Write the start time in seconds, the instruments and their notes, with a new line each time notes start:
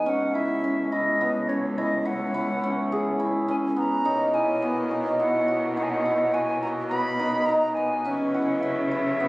Already playing: hammered dulcimer B3 D#4 F#4 G#4
0.05 cello C#2, hammered dulcimer C#4, flute F#5 G#5
0.34 hammered dulcimer E4, flute E5
0.64 hammered dulcimer C#4
0.91 hammered dulcimer E4, flute D#5
1.21 hammered dulcimer B3
1.48 hammered dulcimer C#4, flute C#5
1.78 hammered dulcimer E4, flute D#5
2.05 hammered dulcimer E4, flute F#5
2.34 hammered dulcimer E4
2.63 hammered dulcimer C#4
2.92 hammered dulcimer G#4
3.20 hammered dulcimer E4
3.48 hammered dulcimer C#4, flute G#5
3.76 hammered dulcimer B3, flute A#5
4.05 cello B2, harmonium B2 A#3 D#4, hammered dulcimer D#4, vibraphone C#5
4.34 hammered dulcimer E4, flute G#5
4.62 hammered dulcimer B3
4.91 hammered dulcimer D#4
5.19 hammered dulcimer E4, flute F#5
5.48 hammered dulcimer F#4
5.76 hammered dulcimer D#4, flute F#5
5.83 flute G#5
5.89 flute F#5
6.05 hammered dulcimer E4
6.34 hammered dulcimer F#4, flute G#5
6.62 hammered dulcimer F#4, flute A#5
6.89 hammered dulcimer B3, flute B5
7.19 hammered dulcimer D#4
7.46 hammered dulcimer D#4, flute A#5
7.75 hammered dulcimer B3, flute G#5
8.05 cello C#3, harmonium E3 F#3 B3 E4, hammered dulcimer C#4, vibraphone B4
8.31 hammered dulcimer E4, flute F#5 G#5
8.60 hammered dulcimer C#4, flute E5
8.91 hammered dulcimer E4
9.20 hammered dulcimer B3